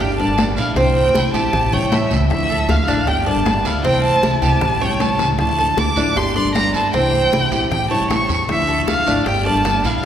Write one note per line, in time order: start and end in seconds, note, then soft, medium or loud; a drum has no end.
0.00 0.27 G1 loud
0.00 0.19 G4 medium
0.00 0.18 G5 medium
0.00 high conga soft
0.00 long guiro medium
0.18 0.36 G3 medium
0.18 0.37 A#3 medium
0.18 0.37 D4 medium
0.18 0.37 A4 medium
0.18 0.57 D5 medium
0.18 0.54 A5 medium
0.18 high conga soft
0.28 0.55 G1 medium
0.37 0.75 G3 medium
0.37 0.76 A#3 soft
0.37 0.76 D4 medium
0.37 0.76 A4 medium
0.37 high bongo medium
0.37 low bongo medium
0.37 high conga medium
0.37 short guiro medium
0.56 0.75 A#1 loud
0.56 0.76 E4 medium
0.56 0.75 F5 medium
0.56 short guiro medium
0.75 1.12 C2 medium
0.75 1.33 C3 medium
0.75 1.33 E3 medium
0.75 1.34 A3 medium
0.75 1.33 C4 medium
0.75 1.14 C4 medium
0.75 1.32 E4 medium
0.75 0.94 G5 loud
0.75 high bongo medium
0.75 high conga soft
0.75 long guiro medium
0.96 1.32 G5 medium
0.96 high conga soft
1.14 1.33 C2 medium
1.14 1.34 E4 medium
1.14 high bongo medium
1.14 high conga loud
1.14 short guiro medium
1.33 1.52 A#1 medium
1.33 1.52 E3 medium
1.33 1.53 A3 medium
1.33 1.53 C4 medium
1.33 1.52 E4 medium
1.33 1.72 G4 medium
1.33 1.74 A5 loud
1.33 high bongo soft
1.33 high conga soft
1.33 short guiro medium
1.53 1.81 A1 loud
1.53 muted nylon-string guitar stroke medium
1.53 high bongo medium
1.53 high conga soft
1.53 low conga medium
1.53 long guiro medium
1.72 1.91 G3 soft
1.72 1.91 C#4 medium
1.72 1.91 E4 medium
1.72 2.10 C#5 medium
1.72 1.94 G5 medium
1.72 high bongo soft
1.72 high conga soft
1.72 low conga medium
1.81 2.09 A1 medium
1.92 2.29 E3 medium
1.92 2.30 G3 medium
1.92 2.30 C#4 medium
1.92 2.30 E4 medium
1.92 2.21 E5 medium
1.92 high bongo medium
1.92 low bongo medium
1.92 high conga medium
1.92 short guiro medium
2.10 2.29 C#2 loud
2.10 high bongo soft
2.10 high conga medium
2.10 short guiro medium
2.30 2.67 D2 loud
2.30 2.87 D3 medium
2.30 2.87 F3 medium
2.30 2.88 A3 medium
2.30 2.87 D4 medium
2.30 2.86 E4 medium
2.30 2.71 E5 loud
2.30 high bongo medium
2.30 high conga soft
2.30 long guiro medium
2.50 2.87 A4 medium
2.50 high conga soft
2.68 2.86 D2 medium
2.68 3.09 F5 medium
2.68 high bongo medium
2.68 high conga medium
2.68 short guiro medium
2.87 3.05 A1 medium
2.87 3.07 F3 medium
2.87 3.07 A3 medium
2.87 3.07 D4 medium
2.87 3.06 E4 medium
2.87 high conga soft
2.87 short guiro medium
3.06 3.34 G1 loud
3.06 3.26 G4 medium
3.06 3.26 G5 medium
3.06 muted nylon-string guitar stroke medium
3.06 high bongo medium
3.06 high conga soft
3.06 long guiro medium
3.26 3.44 G3 medium
3.26 3.45 A#3 medium
3.26 3.46 D4 medium
3.26 3.45 A4 medium
3.26 3.64 D5 medium
3.26 3.67 A5 loud
3.26 high conga soft
3.36 3.64 G1 medium
3.46 3.84 G3 medium
3.46 3.84 A#3 soft
3.46 3.84 D4 medium
3.46 3.85 A4 medium
3.46 high bongo medium
3.46 low bongo medium
3.46 high conga medium
3.46 short guiro medium
3.65 3.83 D2 loud
3.65 3.84 E4 medium
3.65 3.84 F5 medium
3.65 short guiro medium
3.84 4.21 C2 medium
3.84 4.41 C3 medium
3.84 4.42 E3 medium
3.84 4.43 A3 medium
3.84 4.22 C4 medium
3.84 4.41 C4 medium
3.84 4.41 E4 medium
3.84 4.03 G5 loud
3.84 high bongo medium
3.84 high conga soft
3.84 long guiro medium
4.04 4.40 A5 loud
4.04 high conga soft
4.22 4.41 C2 medium
4.22 4.42 E4 medium
4.22 high bongo medium
4.22 high conga medium
4.22 short guiro medium
4.41 4.60 C2 medium
4.41 4.60 E3 medium
4.41 4.61 A3 medium
4.41 4.61 C4 medium
4.41 4.61 E4 medium
4.41 4.80 G4 medium
4.41 4.83 A5 loud
4.41 high bongo soft
4.41 high conga soft
4.41 short guiro medium
4.61 4.89 A1 loud
4.61 muted nylon-string guitar stroke medium
4.61 high bongo medium
4.61 high conga soft
4.61 low conga medium
4.61 long guiro medium
4.80 4.99 G3 medium
4.80 4.99 C#4 medium
4.80 4.99 E4 medium
4.80 5.19 C#5 medium
4.80 5.02 G5 medium
4.80 high conga soft
4.90 5.18 A1 medium
4.99 5.38 E3 soft
4.99 5.38 G3 medium
4.99 5.38 C#4 medium
4.99 5.39 E4 medium
4.99 5.29 A5 loud
4.99 low bongo loud
4.99 high conga medium
4.99 short guiro medium
5.19 5.37 C#2 medium
5.19 low bongo medium
5.19 short guiro medium
5.38 5.75 D2 medium
5.38 5.96 D3 medium
5.38 5.96 F3 medium
5.38 5.97 A3 medium
5.38 5.95 D4 medium
5.38 5.95 E4 medium
5.38 5.80 A5 loud
5.38 high bongo medium
5.38 high conga soft
5.38 long guiro medium
5.58 5.96 A4 medium
5.58 high conga soft
5.77 5.96 D2 medium
5.77 6.19 D6 loud
5.77 high bongo medium
5.77 high conga medium
5.77 short guiro medium
5.96 6.15 A1 medium
5.96 6.16 F3 medium
5.96 6.16 A3 medium
5.96 6.15 D4 medium
5.96 6.16 D4 medium
5.96 6.15 E4 medium
5.96 high conga soft
5.96 short guiro medium
6.16 6.44 G1 loud
6.16 6.35 G4 medium
6.16 6.36 C6 loud
6.16 high bongo medium
6.16 high conga soft
6.16 long guiro medium
6.35 6.54 G3 medium
6.35 6.54 A#3 medium
6.35 6.54 D4 medium
6.35 6.54 A4 medium
6.35 6.73 D5 medium
6.35 6.54 C6 loud
6.35 high conga soft
6.45 6.73 G1 medium
6.55 6.93 G3 soft
6.55 6.93 A#3 medium
6.55 6.93 D4 medium
6.55 6.94 A4 medium
6.55 6.73 A#5 loud
6.55 high bongo medium
6.55 low bongo medium
6.55 high conga medium
6.55 short guiro medium
6.74 6.93 G2 loud
6.74 6.93 E4 medium
6.74 6.93 A5 medium
6.74 short guiro medium
6.93 7.30 C2 medium
6.93 7.51 C3 medium
6.93 7.51 E3 medium
6.93 7.52 A3 medium
6.93 7.31 C4 medium
6.93 7.51 C4 medium
6.93 7.50 E4 medium
6.93 7.67 G5 loud
6.93 high bongo medium
6.93 high conga soft
6.93 long guiro medium
7.14 high conga soft
7.32 7.51 C2 medium
7.32 7.51 E4 medium
7.32 high bongo medium
7.32 high conga loud
7.32 short guiro medium
7.51 7.70 A#1 medium
7.51 7.70 E3 medium
7.51 7.71 A3 medium
7.51 7.71 C4 medium
7.51 7.70 E4 medium
7.51 7.89 G4 medium
7.51 high bongo soft
7.51 high conga soft
7.51 short guiro medium
7.71 7.99 A1 loud
7.71 7.90 G5 loud
7.71 muted nylon-string guitar stroke medium
7.71 high bongo medium
7.71 high conga soft
7.71 low conga medium
7.71 long guiro medium
7.91 8.10 G3 medium
7.91 8.10 C#4 medium
7.91 8.09 E4 medium
7.91 8.28 C#5 medium
7.91 8.09 A5 loud
7.91 high bongo soft
7.91 high conga soft
8.00 8.28 A1 medium
8.10 8.48 E3 medium
8.10 8.49 G3 medium
8.10 8.49 C#4 medium
8.10 8.49 E4 medium
8.10 8.37 C#6 loud
8.10 high bongo medium
8.10 low bongo medium
8.10 high conga medium
8.10 short guiro medium
8.29 8.47 E2 loud
8.29 high bongo soft
8.29 short guiro medium
8.48 8.85 D2 loud
8.48 9.06 D3 medium
8.48 9.06 F3 medium
8.48 9.07 A3 medium
8.48 9.06 D4 medium
8.48 9.05 E4 medium
8.48 8.86 E5 loud
8.48 high bongo medium
8.48 high conga soft
8.48 long guiro medium
8.68 9.06 A4 medium
8.68 high conga soft
8.87 9.06 D2 medium
8.87 9.24 F5 loud
8.87 high bongo medium
8.87 high conga loud
8.87 short guiro medium
9.06 9.25 G#1 loud
9.06 9.26 F3 medium
9.06 9.26 A3 medium
9.06 9.26 D4 medium
9.06 9.25 E4 medium
9.06 high conga soft
9.06 short guiro medium
9.25 9.53 G1 loud
9.25 9.45 G4 medium
9.25 9.45 G5 loud
9.25 muted nylon-string guitar stroke medium
9.25 high bongo medium
9.25 high conga soft
9.25 long guiro medium
9.45 9.64 G3 medium
9.45 9.64 A#3 medium
9.45 9.65 D4 medium
9.45 9.64 A4 medium
9.45 9.84 D5 medium
9.45 9.87 A5 loud
9.45 high conga soft
9.54 9.82 G1 medium
9.65 10.03 G3 medium
9.65 10.03 A#3 medium
9.65 10.04 D4 medium
9.65 10.04 A4 medium
9.65 high bongo medium
9.65 low bongo medium
9.65 high conga medium
9.65 short guiro medium
9.83 10.02 A#1 loud
9.83 10.03 E4 medium
9.83 9.96 F5 medium
9.83 short guiro medium
9.97 10.05 F5 medium